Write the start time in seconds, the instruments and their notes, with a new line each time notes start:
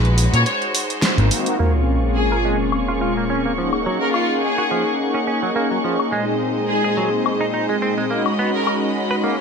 Already playing: picked electric bass A#1, string section G#3 D#4 F#4 B4
0.05 closed hi-hat
0.17 analog synth pad G#3 C#4 D#4 F#4, open hi-hat
0.33 picked electric bass A#2, violin section C#5, closed hi-hat
0.46 string section C5, violin section C#5, closed hi-hat
0.62 closed hi-hat
0.75 open hi-hat
0.90 closed hi-hat
1.02 snare, closed hi-hat
1.17 picked electric bass G#1, analog synth pad A#3 C4 D#4 A#4, closed hi-hat
1.30 analog synth pad A#3 C4 D#4 F#4, open hi-hat
1.46 closed hi-hat
1.58 analog synth pad A#2 G#3 C4 C#4 F4, clean electric guitar A#3, string section A#3 F4 G#4 C#6, sub drop
2.16 violin section G#4
2.32 clean electric guitar A#4
2.45 clean electric guitar G#3
2.72 high woodblock
2.88 clean electric guitar F4
3.01 clean electric guitar F4
3.17 clean electric guitar A#3
3.30 clean electric guitar C#4
3.46 clean electric guitar A#3
3.56 clean electric guitar F3, analog synth pad A#3 C#4 D#4 G#4, string section D#4 F#5
3.73 high woodblock
3.86 clean electric guitar F#3
4.01 violin section A#4
4.14 violin section F4, high woodblock
4.43 violin section G#4
4.58 clean electric guitar F#4
4.71 clean electric guitar F3
5.14 clean electric guitar C#4
5.27 clean electric guitar C#4
5.43 clean electric guitar F#3
5.56 clean electric guitar A#3
5.71 clean electric guitar F#3
5.84 clean electric guitar F3
6.00 high woodblock
6.11 analog synth pad A#2 G#3 C4 D#4 G#4, string section A#2 G#3 C5 D#5, clean electric guitar G#3
6.69 violin section G#4
6.84 clean electric guitar G#4
6.97 clean electric guitar F#3
7.26 high woodblock
7.41 clean electric guitar D#4
7.54 clean electric guitar D#4
7.69 clean electric guitar G#3
7.82 clean electric guitar C4
7.98 clean electric guitar G#3
8.09 analog synth pad G#3 C#4 D#4 F#4, clean electric guitar A#3, string section F#4 B5
8.26 high woodblock
8.39 clean electric guitar B3
8.54 violin section A#4
8.67 high woodblock
9.11 clean electric guitar B4
9.24 clean electric guitar A#3